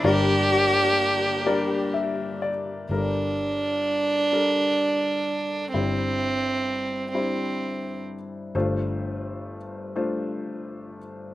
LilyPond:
<<
  \new Staff \with { instrumentName = "Cello" } { \time 6/8 \key g \dorian \tempo 4. = 42 g'2 r4 | r2. | r2. | r2. | }
  \new Staff \with { instrumentName = "Grand piano" } { \time 6/8 \key g \dorian << { r2 e''8 d''8 | r2. | r2. | r2. | } \\ { <g d' bes' d''>4 r8 <g d' bes' d''>4 r8 | <g d' a' bes'>4 r8 <g d' a' bes'>4 r8 | <g d' e' c''>4 r8 <g d' e' c''>4 r8 | <a d' f' c''>4 r8 <a d' f' c''>4 r8 | } >> }
  \new Staff \with { instrumentName = "Grand piano" } { \clef bass \time 6/8 \key g \dorian <g,, g,>2. | <g,, g,>2. | <g,, g,>2. | <g,, g,>2. | }
  \new Staff \with { instrumentName = "Violin" } { \time 6/8 \key g \dorian d'2~ d'8 r8 | d'2. | c'4. c'4 r8 | r2. | }
  \new Staff \with { instrumentName = "String section" } { \time 6/8 \key g \dorian <d bes g'>2. | r2. | r2. | r2. | }
  \new Staff \with { instrumentName = "Fingered electric bass" } { \clef bass \time 6/8 \key g \dorian g,,2. | g,,2. | g,,2. | g,,2. | }
>>